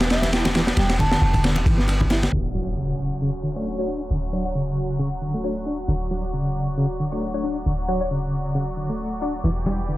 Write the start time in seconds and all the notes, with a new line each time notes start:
Already playing: E1 E3 D4 G4
0.00 B3, snare, ride
0.10 E5, snare, ride
0.22 snare, ride, muted conga, high conga
0.33 E4, snare, ride
0.45 snare, ride, muted conga, low conga
0.55 E3, snare, ride
0.67 snare, ride
0.77 E1 G3 G5, snare, ride, muted conga, high conga
0.89 snare, ride
0.99 D3 A5, kick, ride, muted conga
1.12 snare, ride
1.22 E1
1.34 kick, ride, muted conga, high conga
1.44 D3, snare, ride
1.56 muted conga
1.66 G1 E3, kick, ride
1.78 B3, snare
1.88 ride, muted conga
2.01 kick, high conga
2.10 E4, snare, ride, muted conga
2.23 snare, ride, low conga
2.33 D1 D3 F#3 C#4 F#4, impact
2.55 F#3
2.77 C#3
3.22 C#3
3.44 D3
3.56 A3 D4 F#4 C#5
3.78 D4 F#4 C#5
3.88 D4
4.11 D1 D3
4.33 F#3 D4 F#4 C#5
4.45 D4 F#4 C#5
4.55 C#3
4.99 C#3
5.22 D3
5.34 A3
5.44 D4 F#4 C#5
5.66 D4
5.88 D1 D3 D5
6.11 F#3
6.33 C#3
6.77 C#3
7.00 D3
7.12 A3 D4 F#4 C#5
7.34 D4 F#4 C#5
7.44 D4
7.66 D1 D3
7.88 F#3 D4 F#4 C#5
8.01 D4 F#4 C#5
8.11 C#3
8.55 C#3
8.77 D3
8.90 A3
9.22 D4 F#4 D5
9.44 E1 E3 G4, muted conga
9.66 G3, muted conga, high conga
9.89 D3